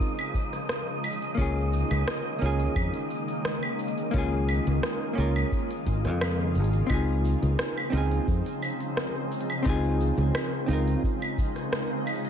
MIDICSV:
0, 0, Header, 1, 6, 480
1, 0, Start_track
1, 0, Key_signature, -5, "major"
1, 0, Tempo, 689655
1, 962, Time_signature, 4, 2, 24, 8
1, 8559, End_track
2, 0, Start_track
2, 0, Title_t, "Synth texture"
2, 0, Program_c, 0, 99
2, 0, Note_on_c, 0, 87, 84
2, 4818, Note_off_c, 0, 87, 0
2, 8559, End_track
3, 0, Start_track
3, 0, Title_t, "Hollow-body jazz guitar"
3, 0, Program_c, 1, 26
3, 0, Note_on_c, 1, 60, 69
3, 0, Note_on_c, 1, 63, 58
3, 0, Note_on_c, 1, 65, 61
3, 0, Note_on_c, 1, 70, 74
3, 919, Note_off_c, 1, 60, 0
3, 929, Note_off_c, 1, 63, 0
3, 934, Note_off_c, 1, 65, 0
3, 937, Note_on_c, 1, 58, 83
3, 944, Note_off_c, 1, 70, 0
3, 956, Note_on_c, 1, 61, 72
3, 968, Note_on_c, 1, 65, 72
3, 983, Note_on_c, 1, 68, 84
3, 1642, Note_off_c, 1, 58, 0
3, 1651, Note_off_c, 1, 61, 0
3, 1657, Note_off_c, 1, 65, 0
3, 1661, Note_on_c, 1, 58, 69
3, 1665, Note_off_c, 1, 68, 0
3, 1679, Note_on_c, 1, 61, 67
3, 1693, Note_on_c, 1, 65, 66
3, 1710, Note_on_c, 1, 68, 78
3, 2844, Note_off_c, 1, 58, 0
3, 2853, Note_off_c, 1, 61, 0
3, 2860, Note_off_c, 1, 65, 0
3, 2860, Note_on_c, 1, 58, 93
3, 2869, Note_off_c, 1, 68, 0
3, 2877, Note_on_c, 1, 61, 90
3, 2897, Note_on_c, 1, 65, 83
3, 2911, Note_on_c, 1, 68, 107
3, 3564, Note_off_c, 1, 58, 0
3, 3572, Note_off_c, 1, 61, 0
3, 3572, Note_on_c, 1, 58, 66
3, 3582, Note_off_c, 1, 65, 0
3, 3586, Note_on_c, 1, 61, 61
3, 3589, Note_off_c, 1, 68, 0
3, 3604, Note_on_c, 1, 65, 63
3, 3618, Note_on_c, 1, 70, 72
3, 4760, Note_off_c, 1, 58, 0
3, 4766, Note_off_c, 1, 61, 0
3, 4776, Note_off_c, 1, 65, 0
3, 4779, Note_on_c, 1, 60, 76
3, 4783, Note_off_c, 1, 70, 0
3, 4798, Note_on_c, 1, 63, 69
3, 4811, Note_on_c, 1, 65, 70
3, 4828, Note_on_c, 1, 68, 84
3, 5483, Note_off_c, 1, 60, 0
3, 5492, Note_off_c, 1, 63, 0
3, 5499, Note_off_c, 1, 65, 0
3, 5499, Note_on_c, 1, 60, 74
3, 5508, Note_off_c, 1, 68, 0
3, 5513, Note_on_c, 1, 63, 66
3, 5529, Note_on_c, 1, 65, 64
3, 5548, Note_on_c, 1, 68, 81
3, 6683, Note_off_c, 1, 60, 0
3, 6690, Note_off_c, 1, 63, 0
3, 6698, Note_off_c, 1, 65, 0
3, 6699, Note_on_c, 1, 60, 94
3, 6707, Note_off_c, 1, 68, 0
3, 6713, Note_on_c, 1, 63, 87
3, 6730, Note_on_c, 1, 65, 92
3, 6747, Note_on_c, 1, 68, 113
3, 7403, Note_off_c, 1, 60, 0
3, 7410, Note_off_c, 1, 63, 0
3, 7418, Note_off_c, 1, 65, 0
3, 7421, Note_on_c, 1, 60, 68
3, 7427, Note_off_c, 1, 68, 0
3, 7433, Note_on_c, 1, 63, 64
3, 7449, Note_on_c, 1, 65, 62
3, 7468, Note_on_c, 1, 70, 73
3, 8559, Note_off_c, 1, 60, 0
3, 8559, Note_off_c, 1, 63, 0
3, 8559, Note_off_c, 1, 65, 0
3, 8559, Note_off_c, 1, 70, 0
3, 8559, End_track
4, 0, Start_track
4, 0, Title_t, "Ambient pad"
4, 0, Program_c, 2, 92
4, 0, Note_on_c, 2, 49, 74
4, 0, Note_on_c, 2, 53, 71
4, 0, Note_on_c, 2, 56, 66
4, 0, Note_on_c, 2, 63, 82
4, 935, Note_off_c, 2, 56, 0
4, 938, Note_off_c, 2, 53, 0
4, 967, Note_on_c, 2, 56, 73
4, 969, Note_on_c, 2, 58, 73
4, 972, Note_on_c, 2, 51, 70
4, 2857, Note_off_c, 2, 63, 0
4, 2877, Note_on_c, 2, 65, 88
4, 4776, Note_off_c, 2, 49, 0
4, 4777, Note_off_c, 2, 56, 0
4, 4777, Note_off_c, 2, 58, 0
4, 4779, Note_off_c, 2, 51, 0
4, 4780, Note_off_c, 2, 65, 0
4, 4807, Note_on_c, 2, 49, 79
4, 4807, Note_on_c, 2, 56, 72
4, 4810, Note_on_c, 2, 60, 74
4, 4810, Note_on_c, 2, 63, 84
4, 4813, Note_on_c, 2, 53, 70
4, 8559, Note_off_c, 2, 49, 0
4, 8559, Note_off_c, 2, 53, 0
4, 8559, Note_off_c, 2, 56, 0
4, 8559, Note_off_c, 2, 60, 0
4, 8559, Note_off_c, 2, 63, 0
4, 8559, End_track
5, 0, Start_track
5, 0, Title_t, "Fingered electric bass"
5, 0, Program_c, 3, 33
5, 957, Note_on_c, 3, 37, 90
5, 1267, Note_off_c, 3, 37, 0
5, 1328, Note_on_c, 3, 37, 96
5, 1409, Note_off_c, 3, 37, 0
5, 1684, Note_on_c, 3, 37, 93
5, 1857, Note_off_c, 3, 37, 0
5, 1918, Note_on_c, 3, 41, 73
5, 2009, Note_off_c, 3, 41, 0
5, 2879, Note_on_c, 3, 37, 97
5, 3188, Note_off_c, 3, 37, 0
5, 3250, Note_on_c, 3, 37, 98
5, 3330, Note_off_c, 3, 37, 0
5, 3604, Note_on_c, 3, 37, 94
5, 3777, Note_off_c, 3, 37, 0
5, 4081, Note_on_c, 3, 32, 92
5, 4208, Note_on_c, 3, 41, 100
5, 4218, Note_off_c, 3, 32, 0
5, 4562, Note_on_c, 3, 32, 81
5, 4573, Note_off_c, 3, 41, 0
5, 4736, Note_off_c, 3, 32, 0
5, 4800, Note_on_c, 3, 37, 96
5, 5108, Note_off_c, 3, 37, 0
5, 5168, Note_on_c, 3, 37, 95
5, 5249, Note_off_c, 3, 37, 0
5, 5519, Note_on_c, 3, 37, 98
5, 5694, Note_off_c, 3, 37, 0
5, 5760, Note_on_c, 3, 41, 77
5, 5850, Note_off_c, 3, 41, 0
5, 6720, Note_on_c, 3, 37, 99
5, 7028, Note_off_c, 3, 37, 0
5, 7081, Note_on_c, 3, 37, 97
5, 7166, Note_off_c, 3, 37, 0
5, 7437, Note_on_c, 3, 37, 101
5, 7613, Note_off_c, 3, 37, 0
5, 8559, End_track
6, 0, Start_track
6, 0, Title_t, "Drums"
6, 0, Note_on_c, 9, 36, 107
6, 7, Note_on_c, 9, 82, 43
6, 67, Note_off_c, 9, 36, 0
6, 76, Note_off_c, 9, 82, 0
6, 130, Note_on_c, 9, 46, 51
6, 130, Note_on_c, 9, 75, 77
6, 131, Note_on_c, 9, 82, 21
6, 200, Note_off_c, 9, 46, 0
6, 200, Note_off_c, 9, 75, 0
6, 200, Note_off_c, 9, 82, 0
6, 237, Note_on_c, 9, 36, 97
6, 241, Note_on_c, 9, 82, 67
6, 306, Note_off_c, 9, 36, 0
6, 311, Note_off_c, 9, 82, 0
6, 368, Note_on_c, 9, 37, 27
6, 368, Note_on_c, 9, 46, 41
6, 369, Note_on_c, 9, 82, 31
6, 438, Note_off_c, 9, 37, 0
6, 438, Note_off_c, 9, 46, 0
6, 438, Note_off_c, 9, 82, 0
6, 482, Note_on_c, 9, 37, 92
6, 482, Note_on_c, 9, 46, 53
6, 482, Note_on_c, 9, 82, 41
6, 551, Note_off_c, 9, 37, 0
6, 551, Note_off_c, 9, 46, 0
6, 552, Note_off_c, 9, 82, 0
6, 611, Note_on_c, 9, 82, 19
6, 680, Note_off_c, 9, 82, 0
6, 724, Note_on_c, 9, 46, 39
6, 724, Note_on_c, 9, 75, 78
6, 725, Note_on_c, 9, 82, 73
6, 787, Note_off_c, 9, 46, 0
6, 787, Note_on_c, 9, 46, 51
6, 794, Note_off_c, 9, 75, 0
6, 794, Note_off_c, 9, 82, 0
6, 851, Note_off_c, 9, 46, 0
6, 851, Note_on_c, 9, 46, 43
6, 851, Note_on_c, 9, 82, 30
6, 920, Note_off_c, 9, 46, 0
6, 921, Note_off_c, 9, 82, 0
6, 957, Note_on_c, 9, 36, 101
6, 966, Note_on_c, 9, 46, 50
6, 966, Note_on_c, 9, 82, 40
6, 1027, Note_off_c, 9, 36, 0
6, 1035, Note_off_c, 9, 46, 0
6, 1036, Note_off_c, 9, 82, 0
6, 1091, Note_on_c, 9, 82, 19
6, 1161, Note_off_c, 9, 82, 0
6, 1203, Note_on_c, 9, 82, 73
6, 1273, Note_off_c, 9, 82, 0
6, 1329, Note_on_c, 9, 46, 46
6, 1329, Note_on_c, 9, 75, 77
6, 1329, Note_on_c, 9, 82, 29
6, 1398, Note_off_c, 9, 46, 0
6, 1398, Note_off_c, 9, 75, 0
6, 1399, Note_off_c, 9, 82, 0
6, 1444, Note_on_c, 9, 37, 98
6, 1444, Note_on_c, 9, 46, 57
6, 1445, Note_on_c, 9, 82, 40
6, 1514, Note_off_c, 9, 37, 0
6, 1514, Note_off_c, 9, 46, 0
6, 1514, Note_off_c, 9, 82, 0
6, 1567, Note_on_c, 9, 82, 21
6, 1637, Note_off_c, 9, 82, 0
6, 1682, Note_on_c, 9, 82, 68
6, 1751, Note_off_c, 9, 82, 0
6, 1809, Note_on_c, 9, 46, 45
6, 1809, Note_on_c, 9, 82, 31
6, 1878, Note_off_c, 9, 46, 0
6, 1879, Note_off_c, 9, 82, 0
6, 1919, Note_on_c, 9, 36, 103
6, 1921, Note_on_c, 9, 75, 82
6, 1922, Note_on_c, 9, 82, 43
6, 1988, Note_off_c, 9, 36, 0
6, 1991, Note_off_c, 9, 75, 0
6, 1992, Note_off_c, 9, 82, 0
6, 2045, Note_on_c, 9, 46, 52
6, 2045, Note_on_c, 9, 82, 21
6, 2115, Note_off_c, 9, 46, 0
6, 2115, Note_off_c, 9, 82, 0
6, 2160, Note_on_c, 9, 82, 72
6, 2229, Note_off_c, 9, 82, 0
6, 2286, Note_on_c, 9, 46, 45
6, 2287, Note_on_c, 9, 82, 31
6, 2356, Note_off_c, 9, 46, 0
6, 2356, Note_off_c, 9, 82, 0
6, 2401, Note_on_c, 9, 37, 95
6, 2401, Note_on_c, 9, 46, 52
6, 2401, Note_on_c, 9, 82, 38
6, 2471, Note_off_c, 9, 37, 0
6, 2471, Note_off_c, 9, 46, 0
6, 2471, Note_off_c, 9, 82, 0
6, 2525, Note_on_c, 9, 75, 78
6, 2525, Note_on_c, 9, 82, 19
6, 2594, Note_off_c, 9, 75, 0
6, 2595, Note_off_c, 9, 82, 0
6, 2638, Note_on_c, 9, 46, 41
6, 2639, Note_on_c, 9, 82, 73
6, 2702, Note_off_c, 9, 46, 0
6, 2702, Note_on_c, 9, 46, 52
6, 2708, Note_off_c, 9, 82, 0
6, 2768, Note_off_c, 9, 46, 0
6, 2768, Note_on_c, 9, 46, 42
6, 2769, Note_on_c, 9, 82, 30
6, 2838, Note_off_c, 9, 46, 0
6, 2838, Note_off_c, 9, 82, 0
6, 2880, Note_on_c, 9, 36, 108
6, 2881, Note_on_c, 9, 46, 54
6, 2881, Note_on_c, 9, 82, 40
6, 2950, Note_off_c, 9, 36, 0
6, 2951, Note_off_c, 9, 46, 0
6, 2951, Note_off_c, 9, 82, 0
6, 3008, Note_on_c, 9, 82, 18
6, 3077, Note_off_c, 9, 82, 0
6, 3122, Note_on_c, 9, 46, 31
6, 3122, Note_on_c, 9, 75, 82
6, 3123, Note_on_c, 9, 82, 77
6, 3192, Note_off_c, 9, 46, 0
6, 3192, Note_off_c, 9, 75, 0
6, 3192, Note_off_c, 9, 82, 0
6, 3251, Note_on_c, 9, 46, 45
6, 3251, Note_on_c, 9, 82, 31
6, 3320, Note_off_c, 9, 46, 0
6, 3321, Note_off_c, 9, 82, 0
6, 3363, Note_on_c, 9, 37, 97
6, 3363, Note_on_c, 9, 46, 58
6, 3363, Note_on_c, 9, 82, 44
6, 3433, Note_off_c, 9, 37, 0
6, 3433, Note_off_c, 9, 46, 0
6, 3433, Note_off_c, 9, 82, 0
6, 3490, Note_on_c, 9, 82, 20
6, 3559, Note_off_c, 9, 82, 0
6, 3602, Note_on_c, 9, 46, 31
6, 3603, Note_on_c, 9, 82, 68
6, 3672, Note_off_c, 9, 46, 0
6, 3673, Note_off_c, 9, 82, 0
6, 3730, Note_on_c, 9, 46, 43
6, 3730, Note_on_c, 9, 75, 78
6, 3731, Note_on_c, 9, 82, 30
6, 3800, Note_off_c, 9, 46, 0
6, 3800, Note_off_c, 9, 75, 0
6, 3801, Note_off_c, 9, 82, 0
6, 3840, Note_on_c, 9, 36, 102
6, 3845, Note_on_c, 9, 82, 42
6, 3910, Note_off_c, 9, 36, 0
6, 3915, Note_off_c, 9, 82, 0
6, 3972, Note_on_c, 9, 46, 57
6, 3972, Note_on_c, 9, 82, 20
6, 4041, Note_off_c, 9, 46, 0
6, 4042, Note_off_c, 9, 82, 0
6, 4080, Note_on_c, 9, 36, 102
6, 4085, Note_on_c, 9, 46, 32
6, 4085, Note_on_c, 9, 82, 70
6, 4149, Note_off_c, 9, 36, 0
6, 4154, Note_off_c, 9, 46, 0
6, 4155, Note_off_c, 9, 82, 0
6, 4210, Note_on_c, 9, 37, 31
6, 4210, Note_on_c, 9, 46, 44
6, 4211, Note_on_c, 9, 82, 31
6, 4280, Note_off_c, 9, 37, 0
6, 4280, Note_off_c, 9, 46, 0
6, 4280, Note_off_c, 9, 82, 0
6, 4324, Note_on_c, 9, 37, 98
6, 4324, Note_on_c, 9, 46, 57
6, 4324, Note_on_c, 9, 75, 80
6, 4325, Note_on_c, 9, 82, 38
6, 4394, Note_off_c, 9, 37, 0
6, 4394, Note_off_c, 9, 46, 0
6, 4394, Note_off_c, 9, 75, 0
6, 4394, Note_off_c, 9, 82, 0
6, 4447, Note_on_c, 9, 82, 19
6, 4517, Note_off_c, 9, 82, 0
6, 4561, Note_on_c, 9, 46, 43
6, 4561, Note_on_c, 9, 82, 72
6, 4623, Note_off_c, 9, 46, 0
6, 4623, Note_on_c, 9, 46, 54
6, 4631, Note_off_c, 9, 82, 0
6, 4687, Note_off_c, 9, 46, 0
6, 4687, Note_on_c, 9, 46, 44
6, 4687, Note_on_c, 9, 82, 29
6, 4756, Note_off_c, 9, 46, 0
6, 4757, Note_off_c, 9, 82, 0
6, 4800, Note_on_c, 9, 36, 114
6, 4800, Note_on_c, 9, 46, 55
6, 4800, Note_on_c, 9, 75, 80
6, 4801, Note_on_c, 9, 82, 45
6, 4869, Note_off_c, 9, 36, 0
6, 4870, Note_off_c, 9, 46, 0
6, 4870, Note_off_c, 9, 75, 0
6, 4870, Note_off_c, 9, 82, 0
6, 4930, Note_on_c, 9, 82, 20
6, 5000, Note_off_c, 9, 82, 0
6, 5044, Note_on_c, 9, 82, 82
6, 5114, Note_off_c, 9, 82, 0
6, 5171, Note_on_c, 9, 46, 44
6, 5171, Note_on_c, 9, 82, 32
6, 5240, Note_off_c, 9, 46, 0
6, 5241, Note_off_c, 9, 82, 0
6, 5282, Note_on_c, 9, 37, 107
6, 5282, Note_on_c, 9, 46, 60
6, 5283, Note_on_c, 9, 82, 45
6, 5352, Note_off_c, 9, 37, 0
6, 5352, Note_off_c, 9, 46, 0
6, 5352, Note_off_c, 9, 82, 0
6, 5411, Note_on_c, 9, 75, 79
6, 5412, Note_on_c, 9, 82, 23
6, 5481, Note_off_c, 9, 75, 0
6, 5481, Note_off_c, 9, 82, 0
6, 5523, Note_on_c, 9, 82, 79
6, 5592, Note_off_c, 9, 82, 0
6, 5648, Note_on_c, 9, 46, 44
6, 5649, Note_on_c, 9, 82, 35
6, 5718, Note_off_c, 9, 46, 0
6, 5718, Note_off_c, 9, 82, 0
6, 5760, Note_on_c, 9, 36, 122
6, 5764, Note_on_c, 9, 82, 44
6, 5829, Note_off_c, 9, 36, 0
6, 5833, Note_off_c, 9, 82, 0
6, 5890, Note_on_c, 9, 46, 60
6, 5891, Note_on_c, 9, 82, 23
6, 5960, Note_off_c, 9, 46, 0
6, 5960, Note_off_c, 9, 82, 0
6, 6003, Note_on_c, 9, 75, 71
6, 6003, Note_on_c, 9, 82, 73
6, 6073, Note_off_c, 9, 75, 0
6, 6073, Note_off_c, 9, 82, 0
6, 6129, Note_on_c, 9, 46, 48
6, 6129, Note_on_c, 9, 82, 33
6, 6198, Note_off_c, 9, 46, 0
6, 6199, Note_off_c, 9, 82, 0
6, 6244, Note_on_c, 9, 37, 100
6, 6244, Note_on_c, 9, 46, 57
6, 6245, Note_on_c, 9, 82, 46
6, 6314, Note_off_c, 9, 37, 0
6, 6314, Note_off_c, 9, 46, 0
6, 6314, Note_off_c, 9, 82, 0
6, 6371, Note_on_c, 9, 82, 21
6, 6441, Note_off_c, 9, 82, 0
6, 6486, Note_on_c, 9, 46, 43
6, 6486, Note_on_c, 9, 82, 81
6, 6547, Note_off_c, 9, 46, 0
6, 6547, Note_on_c, 9, 46, 54
6, 6556, Note_off_c, 9, 82, 0
6, 6611, Note_off_c, 9, 46, 0
6, 6611, Note_on_c, 9, 46, 45
6, 6611, Note_on_c, 9, 75, 77
6, 6611, Note_on_c, 9, 82, 32
6, 6680, Note_off_c, 9, 46, 0
6, 6680, Note_off_c, 9, 75, 0
6, 6681, Note_off_c, 9, 82, 0
6, 6719, Note_on_c, 9, 36, 121
6, 6723, Note_on_c, 9, 46, 59
6, 6723, Note_on_c, 9, 82, 45
6, 6789, Note_off_c, 9, 36, 0
6, 6792, Note_off_c, 9, 46, 0
6, 6793, Note_off_c, 9, 82, 0
6, 6849, Note_on_c, 9, 82, 20
6, 6919, Note_off_c, 9, 82, 0
6, 6963, Note_on_c, 9, 82, 86
6, 7032, Note_off_c, 9, 82, 0
6, 7088, Note_on_c, 9, 46, 44
6, 7089, Note_on_c, 9, 82, 35
6, 7158, Note_off_c, 9, 46, 0
6, 7158, Note_off_c, 9, 82, 0
6, 7202, Note_on_c, 9, 37, 105
6, 7202, Note_on_c, 9, 46, 57
6, 7202, Note_on_c, 9, 75, 72
6, 7203, Note_on_c, 9, 82, 47
6, 7272, Note_off_c, 9, 37, 0
6, 7272, Note_off_c, 9, 46, 0
6, 7272, Note_off_c, 9, 75, 0
6, 7272, Note_off_c, 9, 82, 0
6, 7328, Note_on_c, 9, 82, 23
6, 7398, Note_off_c, 9, 82, 0
6, 7445, Note_on_c, 9, 82, 77
6, 7515, Note_off_c, 9, 82, 0
6, 7570, Note_on_c, 9, 46, 43
6, 7570, Note_on_c, 9, 82, 36
6, 7640, Note_off_c, 9, 46, 0
6, 7640, Note_off_c, 9, 82, 0
6, 7679, Note_on_c, 9, 36, 120
6, 7687, Note_on_c, 9, 82, 46
6, 7749, Note_off_c, 9, 36, 0
6, 7757, Note_off_c, 9, 82, 0
6, 7811, Note_on_c, 9, 46, 59
6, 7811, Note_on_c, 9, 75, 72
6, 7811, Note_on_c, 9, 82, 24
6, 7880, Note_off_c, 9, 46, 0
6, 7880, Note_off_c, 9, 75, 0
6, 7881, Note_off_c, 9, 82, 0
6, 7919, Note_on_c, 9, 36, 109
6, 7923, Note_on_c, 9, 82, 74
6, 7989, Note_off_c, 9, 36, 0
6, 7993, Note_off_c, 9, 82, 0
6, 8046, Note_on_c, 9, 37, 31
6, 8046, Note_on_c, 9, 46, 44
6, 8046, Note_on_c, 9, 82, 34
6, 8115, Note_off_c, 9, 37, 0
6, 8115, Note_off_c, 9, 46, 0
6, 8116, Note_off_c, 9, 82, 0
6, 8161, Note_on_c, 9, 37, 103
6, 8161, Note_on_c, 9, 46, 55
6, 8162, Note_on_c, 9, 82, 46
6, 8231, Note_off_c, 9, 37, 0
6, 8231, Note_off_c, 9, 46, 0
6, 8231, Note_off_c, 9, 82, 0
6, 8288, Note_on_c, 9, 82, 21
6, 8358, Note_off_c, 9, 82, 0
6, 8401, Note_on_c, 9, 46, 39
6, 8401, Note_on_c, 9, 75, 73
6, 8401, Note_on_c, 9, 82, 83
6, 8462, Note_off_c, 9, 46, 0
6, 8462, Note_on_c, 9, 46, 52
6, 8470, Note_off_c, 9, 75, 0
6, 8471, Note_off_c, 9, 82, 0
6, 8526, Note_off_c, 9, 46, 0
6, 8526, Note_on_c, 9, 46, 43
6, 8526, Note_on_c, 9, 82, 34
6, 8559, Note_off_c, 9, 46, 0
6, 8559, Note_off_c, 9, 82, 0
6, 8559, End_track
0, 0, End_of_file